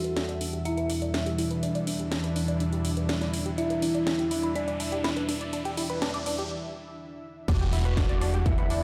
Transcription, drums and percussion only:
0.04 closed hi-hat
0.17 snare, closed hi-hat
0.29 closed hi-hat
0.41 open hi-hat
0.53 closed hi-hat
0.65 closed hi-hat
0.78 closed hi-hat
0.90 open hi-hat
1.02 closed hi-hat
1.14 snare, closed hi-hat
1.26 closed hi-hat
1.38 open hi-hat
1.51 closed hi-hat
1.63 closed hi-hat
1.75 closed hi-hat
1.87 open hi-hat
1.99 closed hi-hat
2.12 snare, closed hi-hat
2.24 closed hi-hat
2.36 open hi-hat
2.48 closed hi-hat
2.60 closed hi-hat
2.73 closed hi-hat
2.85 open hi-hat
2.97 closed hi-hat
3.09 snare, closed hi-hat
3.21 snare, closed hi-hat
3.34 open hi-hat
3.46 closed hi-hat
3.58 closed hi-hat
3.70 closed hi-hat
3.82 open hi-hat
3.95 closed hi-hat
4.07 snare, closed hi-hat
4.19 closed hi-hat
4.31 open hi-hat
4.43 closed hi-hat
4.56 closed hi-hat
4.68 closed hi-hat
4.80 open hi-hat
4.92 closed hi-hat
5.04 snare, closed hi-hat
5.17 closed hi-hat
5.29 open hi-hat
5.41 closed hi-hat
5.53 closed hi-hat
5.65 closed hi-hat
5.77 open hi-hat
5.90 closed hi-hat
6.02 snare, closed hi-hat
6.14 closed hi-hat
6.26 open hi-hat
6.39 closed hi-hat
7.48 kick, cross-stick, closed hi-hat, crash
7.61 closed hi-hat
7.73 open hi-hat
7.85 cross-stick, closed hi-hat
7.97 kick, snare, closed hi-hat
8.09 closed hi-hat
8.21 cross-stick, open hi-hat
8.34 closed hi-hat
8.46 kick, closed hi-hat
8.58 cross-stick, closed hi-hat
8.70 open hi-hat

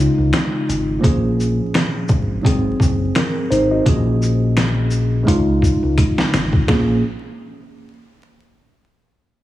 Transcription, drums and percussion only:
0.00 shaker
0.33 finger snap, snare, closed hi-hat
0.70 closed hi-hat, shaker
1.04 kick, closed hi-hat
1.40 shaker
1.74 finger snap, snare, closed hi-hat
2.08 kick, shaker
2.45 kick, closed hi-hat
2.80 kick, shaker
3.15 finger snap, snare, closed hi-hat
3.52 closed hi-hat, shaker
3.86 kick, closed hi-hat
4.22 shaker
4.57 finger snap, snare, closed hi-hat
4.91 shaker
5.27 kick, closed hi-hat
5.62 kick, shaker
5.98 finger snap, kick, closed hi-hat
6.18 snare
6.34 snare, closed hi-hat, shaker
6.53 kick
6.68 finger snap, kick, snare

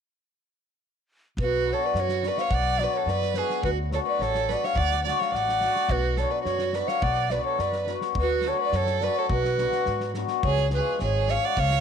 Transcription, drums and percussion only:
1.38 kick
1.95 snare
2.09 snare
2.23 snare
2.37 snare
2.51 kick
2.79 snare
3.08 snare
3.22 snare
3.34 snare
3.50 snare
3.63 kick
3.92 snare
4.21 snare
4.35 snare
4.49 snare
4.64 snare
4.77 kick
4.92 snare
5.08 snare
5.21 snare
5.35 snare
5.49 snare
5.61 snare
5.76 snare
5.89 kick
6.17 snare
6.45 snare
6.59 snare
6.73 snare
6.88 snare
7.02 kick
7.30 snare
7.59 snare
7.72 snare
7.87 snare
8.01 snare
8.15 kick
8.41 snare
8.72 snare
8.86 snare
9.01 snare
9.30 kick
9.45 snare
9.58 snare
9.72 snare
9.85 snare
10.00 snare
10.14 snare
10.28 snare
10.43 kick
10.56 snare
10.70 snare
10.99 snare
11.28 snare
11.57 kick
11.70 snare

